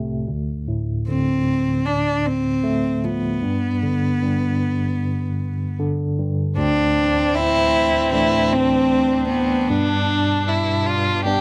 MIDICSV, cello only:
0, 0, Header, 1, 2, 480
1, 0, Start_track
1, 0, Tempo, 783290
1, 177, Time_signature, 4, 2, 24, 8
1, 6991, End_track
2, 0, Start_track
2, 0, Title_t, "Cello"
2, 0, Program_c, 0, 42
2, 668, Note_on_c, 0, 60, 89
2, 1138, Note_on_c, 0, 62, 81
2, 1147, Note_off_c, 0, 60, 0
2, 1382, Note_on_c, 0, 60, 85
2, 1391, Note_off_c, 0, 62, 0
2, 1862, Note_on_c, 0, 59, 85
2, 1871, Note_off_c, 0, 60, 0
2, 3542, Note_off_c, 0, 59, 0
2, 4034, Note_on_c, 0, 62, 93
2, 4504, Note_on_c, 0, 64, 105
2, 4513, Note_off_c, 0, 62, 0
2, 4981, Note_off_c, 0, 64, 0
2, 4986, Note_on_c, 0, 64, 92
2, 5223, Note_on_c, 0, 60, 91
2, 5232, Note_off_c, 0, 64, 0
2, 5689, Note_off_c, 0, 60, 0
2, 5693, Note_on_c, 0, 59, 83
2, 6149, Note_off_c, 0, 59, 0
2, 6991, End_track
0, 0, End_of_file